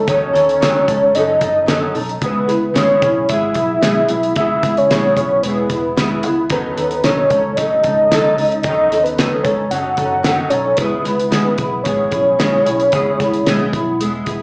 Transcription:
0.07 D#2 D#3 F#3 C#4 D#4 A4 C#5, kick, closed hi-hat
0.33 D#2 D#4 A4, snare, closed hi-hat
0.37 C#4
0.49 closed hi-hat
0.60 C#2 D#3 F#3 C#4 D#4 A4, snare, closed hi-hat
0.88 C#2 C#4 D#4 A4, kick, closed hi-hat
1.14 F#1 F#3 C#4 D#4 A4 D#5, closed hi-hat
1.41 F#1 C#4 D#4 A4, kick, closed hi-hat
1.66 D#3 F#3 C#4 D#4 A4, snare, closed hi-hat
1.94 B1 C#4 D#4 A4, open hi-hat
2.09 closed hi-hat
2.21 C#2 C#3 G#3 B3 E4 G#4, kick, closed hi-hat
2.25 B4
2.47 C#2 B3 E4 G#4, snare, closed hi-hat
2.74 A1 C#3 G#3 B3 E4 G#4 C#5, snare, closed hi-hat
3.02 B1 E4 G#4, kick, closed hi-hat
3.06 B3
3.29 G#1 G#3 B3 E4 E5, kick, closed hi-hat
3.33 G#4
3.54 B1 E4 G#4, kick, closed hi-hat
3.59 B3
3.81 B1 C#3 G#3 B3 E4 G#4, snare, closed hi-hat
4.09 B1 E4 G#4, closed hi-hat
4.13 B3
4.23 closed hi-hat
4.36 C#2 C#3 G#3 B3 E4 E5, kick, closed hi-hat
4.40 G#4
4.63 C#2 E4 G#4, kick, snare, closed hi-hat
4.67 B3
4.77 C#5, closed hi-hat
4.90 B1 C#3 G#3 B3 E4 G#4, snare, closed hi-hat
5.16 B1 E4 G#4 C#5, kick, closed hi-hat
5.21 B3
5.43 E1 G#3 B3 B4, closed hi-hat
5.47 E4 G#4
5.70 E1 G#4, kick, closed hi-hat
5.74 B3 E4
5.96 C#3 G#3 B3 E4 G#4, snare, closed hi-hat
6.23 C#2 E4 G#4, closed hi-hat
6.28 B3
6.50 D#2 D#3 F#3 C#4 D#4 A4 B4, kick, closed hi-hat
6.76 D#2 C#4 D#4 A4, closed hi-hat
6.91 closed hi-hat
7.04 B1 D#3 F#3 C#4 D#4 A4 C#5, snare, closed hi-hat
7.30 C#2 C#4 D#4 A4, kick, closed hi-hat
7.57 A1 F#3 C#4 D#4 A4 D#5, kick, closed hi-hat
7.83 C#2 C#4 D#4 A4, kick, closed hi-hat
8.11 C#2 D#3 F#3 C#4 D#4 A4, snare, closed hi-hat
8.37 C#2 C#4 D#4 A4, open hi-hat
8.52 closed hi-hat
8.63 D#2 D#3 F#3 D#5, kick, closed hi-hat
8.68 C#4 D#4 A4
8.90 D#2 D#4 A4, snare, closed hi-hat
8.95 C#4
9.04 B4, closed hi-hat
9.18 C#2 D#3 F#3 C#4 D#4 A4, snare, closed hi-hat
9.43 C#2 D#4 A4 C#5, kick, closed hi-hat
9.49 C#4
9.71 F#1 F#3 C#4 D#4 A4 F#5, closed hi-hat
9.97 F#1 D#4 A4, kick, closed hi-hat
10.02 C#4
10.23 D#3 F#3 C#4 D#4 A4, snare, closed hi-hat
10.50 B1 D#4 A4 C#5, closed hi-hat
10.55 C#4
10.77 C#2 C#3 G#3 B3 B4, kick, closed hi-hat
10.81 E4 G#4
11.04 C#2 B3 E4 G#4, snare, closed hi-hat
11.20 closed hi-hat
11.31 A1 C#3 G#3 B3 E4 G#4, snare, closed hi-hat
11.58 B1 E4 G#4, kick, closed hi-hat
11.62 B3
11.84 G#1 G#3 B3 E4 C#5, kick, closed hi-hat
11.88 G#4
12.11 B1 B3 E4 G#4, kick, closed hi-hat
12.39 B1 C#3 G#3 B3 E4 G#4, snare, closed hi-hat
12.65 B1 B3 E4 G#4, closed hi-hat
12.80 closed hi-hat
12.92 C#2 C#3 G#3 B3 E4 G#4, kick, closed hi-hat
13.20 C#2 E4 G#4, kick, snare, closed hi-hat
13.24 B3
13.34 closed hi-hat
13.46 B1 C#3 G#3 B3 E4 G#4, snare, closed hi-hat
13.73 B1 B3 E4 G#4, kick, closed hi-hat
13.99 E1 G#3 B3 E4, closed hi-hat
14.04 G#4
14.26 E1 B3 E4 G#4, kick, closed hi-hat

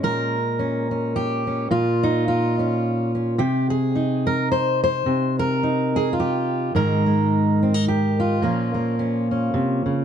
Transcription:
Already playing: G#3 C#4
0.03 A#2 A#4
0.59 C#4
0.91 C#4
1.16 G4
1.47 C#4
1.71 A#2 F4
2.03 D#4
2.28 F4
2.59 C#4
3.15 C#4
3.38 C3 G4
3.70 G#4
3.95 D#4
4.27 A#4
4.52 C5
4.84 C5
5.06 C3
5.39 A#4
5.63 D#4
5.96 G#4
6.13 F4
6.20 G4
6.75 G#2 D#3 G#3 D#4 A#4
7.06 G#3
7.63 C4
7.74 D#4
7.88 G4
8.20 F4
8.42 A#2 F3 A#3 C#4
8.74 A#3
8.99 C#4
9.31 C#4
9.54 C3
9.86 C#3

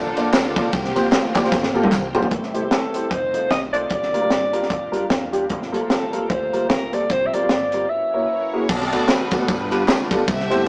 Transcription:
Already playing: F2 F3 A#3 D4 F4 A4 D5
0.17 A#3 D4 F4 A4 D5, ride, tambourine
0.33 C#2 D4 F4 A4, snare, clap, ride, tambourine
0.56 A#3 D4 F4 A4 D5, kick, ride, tambourine
0.73 C2 F3 A#3 C4 G4, kick, ride, tambourine
0.85 snare
0.96 A#1 A#3 C4 F4 G4 C5, ride, tambourine
1.12 A1 A#3 F4, snare, clap, ride, tambourine
1.35 A#3 C4 F4 G4 D5, kick, clap, ride, tambourine
1.44 A#3 C4 F4 G4 C5, snare
1.52 G1, kick, snare, tambourine
1.63 snare
1.74 A#3 C4 F4 G4 A4, tambourine
1.84 high tom
1.92 C2, clap, mid tom, tambourine
2.15 A#3 C4 F4 G4 C5, floor tom, tambourine
2.23 floor tom
2.31 A1 E3 G3 A3 C4 E4 G4, kick, closed hi-hat
2.43 snare
2.54 C2 A3 E4 G4 C5, closed hi-hat
2.63 A3 E4 G4 C5
2.71 A1 A4, snare, closed hi-hat
2.94 A3 E4 G4 C5, closed hi-hat
3.11 F1 D#3 F3 A3 C4 D#4 F4 C5, kick, closed hi-hat
3.34 C2 A3 D#4 F4 C5, closed hi-hat
3.51 B1 D#5, kick, snare, closed hi-hat
3.73 A3 D#4 F4 C5 D5, closed hi-hat
3.90 A#1 A#2 D3 G3 A#3 D4 F4, kick, closed hi-hat
4.03 snare
4.13 D2 G3 D4 F4 A#4, closed hi-hat
4.21 G3 D4 F4 A#4
4.30 G2, snare, closed hi-hat
4.53 G3 D4 F4 A#4, closed hi-hat
4.63 snare
4.70 F2, kick, closed hi-hat
4.92 G3 D4 F4 A#4, closed hi-hat
5.10 E2, kick, snare, closed hi-hat
5.32 G3 D4 F4 G4, closed hi-hat
5.49 G1 G2 F3 A3 G4 A4, kick, closed hi-hat
5.62 snare
5.72 A1 G3 A#3 F4 A4, closed hi-hat
5.81 G3 A#3 F4 A#4
5.90 A1 A4, snare, closed hi-hat
6.12 G3 A#3 F4 A#4, closed hi-hat
6.29 D2 C5, kick, closed hi-hat
6.53 G3 A#3 F4 A#4, closed hi-hat
6.69 C#2 A#4, kick, snare, closed hi-hat
6.93 G3 A#3 F4 A4 D5, closed hi-hat
7.09 C2 C3 F3 C4 C5, kick, closed hi-hat
7.26 E5
7.33 A1 G3 C4 F4 A#4 D5, closed hi-hat
7.42 G3 C4 F4 A#4
7.49 G1, snare, closed hi-hat
7.72 G3 C4 F4 A#4, closed hi-hat
7.89 E3 F#3 C#4 E4 F#4 E5
8.13 A#3 E4 F#4 A#4 C#5
8.22 B4
8.30 E4 A#4 C#5
8.53 A#3 E4 F#4 G#4
8.69 B1 B2 F#4 A4 D5, kick, crash, tambourine
8.81 snare
8.92 D2 A3 B3 D4 F#4 B4, ride, tambourine
9.08 A1 B4, snare, clap, ride, tambourine
9.31 A3 B3 D4 F#4 A4 B4, kick, ride, tambourine
9.40 A3 B3 D4 F#4 B4
9.48 G1 G2 D4 F4 B4, kick, ride, tambourine
9.71 G3 B3 D4 F4 B4, ride, tambourine
9.88 C#2, snare, clap, ride, tambourine
10.11 G3 B3 D4 F4 A4, kick, ride, tambourine
10.28 C2 C3 G4 A4 E5, kick, ride, tambourine
10.40 snare
10.50 G1 A3 C4 E4 G4 C5, ride, tambourine

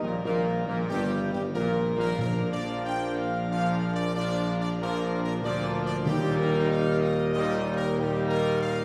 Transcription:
Already playing: D#3 G3 D#4 A#4
0.02 A#1 A#2 A#3 A#4
0.24 A#1 A#2 A#3 A#4
0.67 A#1 A#2 A#3 A#4
0.88 G1 G2 G3 G4
1.32 G1 G2 G3 G4
1.53 A#1 A#2 A#3 A#4
1.96 A#1 A#2 A#3 A#4
2.18 A#1 A#2 F3 A#3 D4 A#4
2.51 D5
2.85 G5
3.17 F5
3.49 A#2 F3 A#3 D4 F5
3.94 D5
4.15 A#2 F3 A#3 D4 D5
4.60 D5
4.79 A#2 F3 A#3 D4 A#4
5.23 A#4
5.42 D2 A#2 F3 A#3 D4 D5
5.85 D5
6.06 D#2 A#2 D#3 G3 A#3 D#4 G4 A#4
6.37 A#4
6.69 F5
7.00 D#5
7.32 A#2 G3 A#3 D#4 D#5
7.76 A#4
7.97 A#2 G3 A#3 D#4 G4
8.29 A#4
8.61 F5

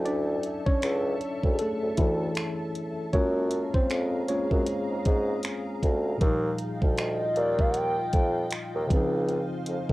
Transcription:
Already playing: D2 F#3 C#4 E4 A4 E5 A5
0.05 D4 D5, closed hi-hat
0.43 closed hi-hat
0.66 C#4 C#5, kick
0.82 C#2, finger snap, closed hi-hat
1.21 closed hi-hat
1.43 D2, kick
1.54 G#4
1.59 A3 A4, closed hi-hat
1.82 D2
1.97 D2 E3 E4, kick, closed hi-hat
2.35 finger snap, closed hi-hat
2.75 closed hi-hat
3.13 F#2 G#3 A#3 C#4 F4 G#4 C#5 F5 A#5, kick, closed hi-hat
3.51 closed hi-hat
3.74 C4 C5, kick
3.90 F2, finger snap, closed hi-hat
4.28 G#3 A#3 C#4 F4 C#5, closed hi-hat
4.51 F#2 G#3 G#4, kick
4.67 closed hi-hat
4.90 G#2
5.05 G#2, kick, closed hi-hat
5.43 finger snap, closed hi-hat
5.83 D2, kick, closed hi-hat
6.17 D#2 A#2 F3 D#5 G5, kick, closed hi-hat
6.21 G3 F4 F5
6.27 D#4
6.58 closed hi-hat
6.82 D2, kick
6.98 D#5, finger snap, closed hi-hat
7.36 D#2 D5, closed hi-hat
7.59 F5, kick
7.70 F#5, closed hi-hat
7.76 G5
8.13 F2, kick, closed hi-hat
8.51 finger snap, closed hi-hat
8.75 D#2
8.87 C#2 C#3 F3 C5 F5, kick
8.91 C4 D#4 G#4, closed hi-hat
8.96 D#4
9.29 closed hi-hat
9.66 F2, closed hi-hat
9.89 kick

